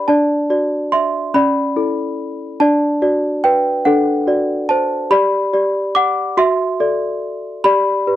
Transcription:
0.08 D4 D5 A5
0.50 F#4 D5
0.92 E5 C6
1.34 C#4 D5 B5
1.76 E4 A4
2.60 D4 D5 A5
3.02 F#4 D5
3.44 B4 G5
3.85 D4 A4 F#5
4.27 F#4 D5
4.69 C5 A5
5.11 G4 D5 B5
5.53 G4 D5
5.95 F#5 D6
6.37 F#4 E5 C6
6.80 A4 D5
7.64 G4 D5 B5
8.07 G4 B4

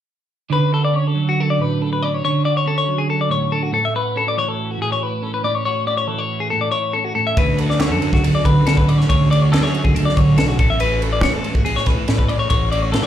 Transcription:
0.50 D3 C#4 B4
0.74 F#4 A4
0.85 D5
0.93 C#4 C#5
1.07 A4
1.15 F#3
1.29 F#4
1.40 A4
1.50 D5
1.59 A2 B4
1.82 D4 A4
1.93 B4
2.03 C#4 D5
2.14 C#5
2.24 D3 C#4 C#5
2.45 F#4 D5
2.57 C#5
2.66 C#4 A4
2.78 C#5
2.88 F#3
2.98 G#4
3.10 A4
3.21 D5
3.29 A2 C#5
3.52 D4 A4
3.63 F#4
3.72 A2 C#4 A4
3.85 E5
3.96 F#4 B4
4.16 C#4 A4
4.28 D5
4.37 E3 C#5
4.48 A4
4.71 F#4
4.78 A2 G#4
4.92 C#5
5.02 E4 B4
5.22 C#4 A4
5.34 B4
5.44 A2 C#4 D5
5.55 C#5
5.65 F#4 C#5
5.87 C#4 D5
5.97 C#5
6.07 E3 A4
6.18 C#5
6.40 G#4
6.50 A2 A4
6.61 D5
6.71 E4 C#5
6.93 C#4 A4
7.04 F#4
7.15 A2 C#4 A4
7.27 E5
7.36 D2 D3 C#4 B4, kick, ride
7.58 F#4 A4, ride
7.70 D5, snare
7.79 D3 C#4 C#5, snare, ride
7.90 F#2 A4
8.01 F#3, ride
8.12 D3 F#4, kick, snare
8.22 D2 A4, ride
8.35 D5
8.45 A2 D3 B4, kick, ride
8.65 D3 D4 A4, snare, ride
8.77 B4, kick
8.88 C#4 D5, ride
8.98 C#5, snare
9.09 D2 D3 C#4 C#5, kick, ride
9.31 F#4 D5, ride
9.42 C#5
9.52 D3 C#4 A4, snare, ride
9.62 F#2 C#5, snare
9.72 F#3, ride
9.84 D3 G#4, kick
9.94 D2 A4, ride
10.05 D5, snare
10.15 A2 D3 C#5, kick, ride
10.36 B1 D4 A4, snare, ride
10.48 F#4, snare
10.57 A1 A2 C#4 A4, kick, ride
10.70 E5
10.80 F#4 B4, ride
11.02 C#4 A4, ride
11.13 D5
11.21 A2 E3 C#5, snare, ride
11.33 C#2 A4
11.44 ride
11.55 A2 F#4, kick
11.65 A1 A2 G#4, ride
11.76 C#5, snare
11.86 A2 C#4 B4, kick, snare, ride
11.97 E4
12.08 A2 C#4 A4, snare, ride
12.18 B4, kick
12.28 A2 C#4 D5, ride
12.39 C#5
12.50 A1 F#4 C#5, kick, ride
12.72 C#4 D5, ride
12.82 C#5
12.91 A2 E3 A4, snare, ride
13.03 C#5

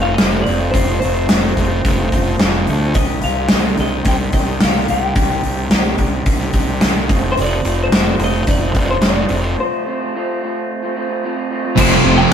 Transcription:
Already playing: F1 F2
0.02 F3 A3 C4 F4 F5
0.15 F2 C3 F3 A3 C4 F4 D#5, snare, open hi-hat
0.20 F1
0.30 F3 A3 C4 F4
0.42 F3 A3 C4 D5
0.46 F1 F4, open hi-hat
0.59 F3 A3 C4 F4
0.71 F1 F2 C3 F3 A3 C4 F4 C5, kick, open hi-hat
1.00 F1 F3 A3 C4 F4 C5, open hi-hat
1.15 F3 A3 C4 F4
1.29 F1 F2 C3 F3 A3 C4 F4, snare, open hi-hat
1.57 F1 F3 A3 C4 F4, kick, open hi-hat
1.85 F1, kick, open hi-hat
2.00 F3 A3 C4 F4
2.12 F1 F3 A3 C4 F4, kick, open hi-hat
2.28 F3 A3 C4 F4
2.40 F1 F2 C3 F3 A3, snare, open hi-hat
2.44 C4 F4
2.55 F3 A3 C4 F4
2.67 D2 F3 A3, open hi-hat
2.72 C4 F4
2.84 F3 A3 C4 F4
2.94 C2 C3 D#3 G3 D#5, kick, open hi-hat
2.99 D4 G4
3.22 C2 D#3 G3 D4 F5, open hi-hat
3.26 G4
3.37 G3 D4 G4
3.49 C2 C3 D#3 G3 D4 D#5, snare, open hi-hat
3.53 G4
3.77 C2 D#3 G3 D4 G4 D#5, open hi-hat
4.05 C2 G5, kick, open hi-hat
4.20 G3 D4 G4
4.33 C2 D#3 G3 D4 G4 D#5, kick, open hi-hat
4.47 G3 D4 G4
4.60 C2 C3 D#3 G3 D4 G4 F5, snare, open hi-hat
4.75 G3 D4 G4
4.88 C2 D#3 G3 D4 G4 G5, open hi-hat
5.01 G3 D4 G4
5.14 C2 C3 D#3 G3 D4 G4, kick, open hi-hat
5.43 C2 D#3 G3 D4 G4, open hi-hat
5.57 G3 D4 G4
5.71 C2 C3 D#3 G3 D4 G4, snare, open hi-hat
5.98 C2 D#3 G3 D4 G4, kick, open hi-hat
6.26 C2, kick, open hi-hat
6.40 G3 D4 G4
6.53 C2 D#3 G3 D4 G4, kick, open hi-hat
6.68 G3 D4 G4
6.81 C2 C3 D#3 G3 D4 G4, snare, open hi-hat
6.96 G3 D4 G4
7.09 F1 F2 C3 F3 A3 C4 F4, kick, open hi-hat
7.24 F3 A3 C4 F4
7.32 C5
7.37 F1 F2 C3 F3 A3 C4 F4, open hi-hat
7.41 D5
7.64 F1 F3 A3 C4 F4, open hi-hat
7.77 F3 A3 C4 F4
7.84 C5
7.90 F1 F2 C3 F3 A3 C4 F4, snare, open hi-hat
8.19 F1 F3 A3 C4 F4, open hi-hat
8.24 D#5
8.47 F1 D5, kick, open hi-hat
8.61 F3 A3 C4 F4
8.75 F1 F3 A3 C4 F4, kick, open hi-hat
8.88 F3 A3 C4 F4 C5
9.01 F1 F2 C3 F3 A3 C4 F4 D5, snare, open hi-hat
9.16 F3 A3 C4 F4
9.29 F1 F3 A3 C4 F4, open hi-hat
9.44 F3 A3 C4 F4 C5
9.57 F2 C3 F3 A3 C4 F4 C5
9.85 F3 A3 C4 F4
10.01 F3 A3 C4 F4
10.14 F2 C3 F3 A3 C4 F4
10.41 F3 A3 C4 F4
10.82 F3 A3 C4 F4
10.95 F3 A3 C4 F4
11.09 F3 A3 C4 F4
11.23 F2 C3 F3 A3 C4 F4
11.36 F3 A3 C4 F4
11.50 F3 A3 C4 F4
11.63 F3 A3 C4 F4
11.76 F1 F2 C3 F3 A3 C4, kick, crash
11.80 C4 C5
11.91 snare
12.04 F1 C3 F3 A3 C4
12.17 F3 A3 C4 G4 G5

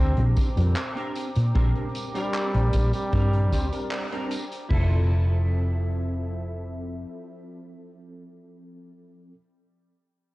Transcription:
Already playing: D2 C4 D4 G4 A#4 C5 G5 A#5 D6
0.17 A#1, closed hi-hat
0.37 kick, closed hi-hat, tambourine
0.56 F2 G3 C4 D4 A#4, closed hi-hat, tambourine
0.76 clap, closed hi-hat, tambourine
0.96 C4 D4 G4 A#4, closed hi-hat
1.15 closed hi-hat, tambourine
1.35 A#2, closed hi-hat, tambourine
1.54 A#1 G3 C4 D4 G4 A#4, kick, closed hi-hat, tambourine
1.75 closed hi-hat
1.95 closed hi-hat, tambourine
2.14 G3 C4 D4 G4 A#4, closed hi-hat, tambourine
2.33 clap, closed hi-hat, tambourine
2.53 A#1 G3 C4 D4 A#4, closed hi-hat
2.73 A#1, muted clean electric guitar stroke, kick, closed hi-hat, tambourine
2.93 G3, closed hi-hat, tambourine
3.12 G2 C4 D4 G4 A#4, kick, closed hi-hat, tambourine
3.33 closed hi-hat
3.52 D2 G3 C4 D4 C5, kick, closed hi-hat, tambourine
3.72 G3 C4 D4 A#4, closed hi-hat, tambourine
3.91 clap, closed hi-hat, tambourine
4.11 G3 C4 D4 G4 A#4, closed hi-hat
4.31 closed hi-hat, tambourine
4.52 closed hi-hat, tambourine
4.69 F1 F3 C4 E4 F4 A4 E5, kick, crash
4.73 A4

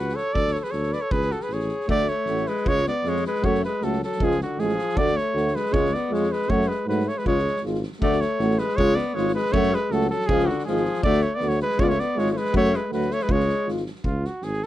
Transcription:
Already playing: C#2 F#4 B4
0.08 snare
0.15 A4 C#5, snare
0.34 D2 A4 D5, kick
0.47 snare
0.52 A4 C#5, snare
0.59 A4 B4 C#5
0.64 G#4, snare
0.71 D2 A4 C#5, snare
0.83 snare
0.92 B4 D5, snare
1.01 A4 C#5
1.11 C#2 G#4 B4, kick
1.21 snare
1.30 F#4 A4, snare
1.40 G#4 B4, snare
1.49 A1 G#4, snare
1.53 C#5
1.59 snare
1.68 snare
1.80 snare
1.88 D2 A3 F#4 D5, kick
1.97 snare
2.07 A3 C#5, snare
2.25 A1 A3 F#4, snare
2.36 snare
2.46 G#3 B4, snare
2.56 snare
2.65 C#2 G#3 F4 C#5, kick
2.77 snare
2.85 B3 D5, snare
3.04 F2 G#3 F4, snare
3.09 C#5
3.16 snare
3.24 G#3 B4, snare
3.35 snare
3.43 F#2 A3 F#4 C#5, kick
3.47 A3
3.54 snare
3.63 G#3 B4, snare
3.81 C#2 A3 F#4 A4, snare
3.85 F#3
3.92 snare
4.03 F#3 A4, snare
4.12 snare
4.19 C#2 F3 G#3 F4, kick
4.24 G#4
4.31 snare
4.41 D3 F#4, snare
4.57 A1 F3 G#3 F4 G#4, snare
4.68 snare
4.78 snare
4.89 snare
4.95 D2 A3 F#4 D5, kick
5.00 A3
5.06 snare
5.16 A3 C#5, snare
5.34 D2 A3 F#4, snare
5.47 snare
5.55 G#3 B4, snare
5.65 snare
5.71 C#2 G#3 F4 C#5, kick
5.85 snare
5.93 B3 D5, snare
6.10 F2 G#3 F4
6.14 C#5, snare
6.23 snare
6.32 G#3 B4, snare
6.42 snare
6.47 F#2 A3 F#4 C#5, kick
6.61 snare
6.68 G#3 B4, snare
6.86 G#2 F#3 A3 F#4 B4, snare
7.00 snare
7.06 A3 C#5, snare
7.16 G#3 B4, snare
7.25 C#2 G#3 F4 C#5, kick
7.38 snare
7.47 snare
7.56 snare
7.63 G#1 G#3 F4, snare
7.74 snare
7.83 snare
7.92 snare
8.01 D2 A3 F#4 D5, kick
8.12 snare
8.20 A3 C#5, snare
8.39 A1 A3 F#4, snare
8.50 snare
8.58 G#3 B4, snare
8.68 snare
8.76 C#2 G#3 F4 C#5, kick
8.88 snare
8.95 B3 D5, snare
9.14 G#1 G#3 F4 C#5, snare
9.28 snare
9.34 G#3 B4, snare
9.45 snare
9.52 F#2 A3 F#4 C#5, kick
9.63 snare
9.72 G#3 B4, snare
9.90 C#2 F#3 A3 F#4 A4, snare
10.00 snare
10.09 F#3 A4, snare
10.20 snare
10.27 C#2 F3 G#3 F4 G#4, kick
10.39 snare
10.46 D3 F#4, snare
10.58 snare
10.65 G#1 F3 G#3 F4 G#4, snare
10.76 snare
10.85 snare
10.94 snare
11.02 D2 A3 F#4 D5, kick
11.13 snare
11.20 A3 C#5, snare
11.35 B3 D5
11.40 D2 A3 F#4, snare
11.48 A3 C#5, snare
11.59 G#3 B4, snare
11.69 snare
11.78 C#2 G#3 F4 C#5, kick
11.83 B3 D5
11.89 A3 C#5, snare
11.99 B3 D5, snare
12.16 G#1 G#3 F4 C#5, snare
12.26 snare
12.31 A3 C#5
12.36 G#3 B4, snare
12.45 snare
12.52 F#2 A3 F#4, kick
12.57 C#5
12.64 snare
12.73 G#3 B4, snare
12.90 D2 F#3 A3 F#4 B4, snare
13.01 snare
13.10 A3 C#5, snare
13.19 G#3 B4, snare
13.28 C#2 G#3 F4, kick
13.32 G#3 C#5
13.39 snare
13.48 snare
13.65 G#1 G#3 F4, snare
13.76 snare
13.86 snare
13.95 snare
14.04 C#2 F4, kick
14.24 F#4, snare
14.42 G#1 G#4, snare
14.53 snare
14.62 A4, snare

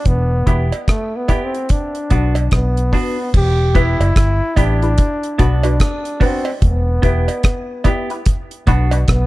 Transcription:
0.05 E1 B3, kick, closed hi-hat
0.46 E1 B3 E4 G4 B4, kick, closed hi-hat
0.72 closed hi-hat, cowbell
0.88 A3, kick, cross-stick, closed hi-hat
1.16 B3
1.28 B3 E4 G4 B4, kick, closed hi-hat, cowbell
1.45 C4
1.54 closed hi-hat
1.69 D4, kick, closed hi-hat
1.95 closed hi-hat
2.10 B1 B3 D4 F#4 B4, kick, closed hi-hat
2.35 closed hi-hat, cowbell
2.51 B1 B3, kick, cross-stick, closed hi-hat
2.77 closed hi-hat
2.92 B3 D4 F#4 B4, kick, open hi-hat
3.34 E1 G4, kick, crash
3.75 B3 E4 G4 B4, kick, closed hi-hat
4.00 F#1, closed hi-hat, cowbell
4.16 G1, kick, cross-stick, closed hi-hat
4.56 A1 B3 D4 E4 G4 B4, kick, closed hi-hat, cowbell
4.82 E4 G4 B4, closed hi-hat
4.98 kick, closed hi-hat
5.23 closed hi-hat
5.38 B1 B3 D4 F#4 B4, kick, closed hi-hat
5.63 D4 F#4 B4, closed hi-hat, cowbell
5.80 kick, cross-stick, closed hi-hat
6.05 closed hi-hat
6.20 B3 C4 D4 F#4 B4, kick, open hi-hat
6.45 cowbell
6.62 E1 B3, kick, closed hi-hat
7.02 E1 B3 E4 G4 B4, kick, closed hi-hat
7.28 closed hi-hat, cowbell
7.43 kick, cross-stick, closed hi-hat
7.84 B3 E4 G4 B4, kick, closed hi-hat, cowbell
8.10 E4 G4 B4, closed hi-hat
8.26 kick, closed hi-hat
8.51 closed hi-hat
8.67 B1 B3 D4 F#4 B4, kick, closed hi-hat
8.91 D4 F#4 B4, closed hi-hat, cowbell
9.08 B1 B3, kick, cross-stick, closed hi-hat

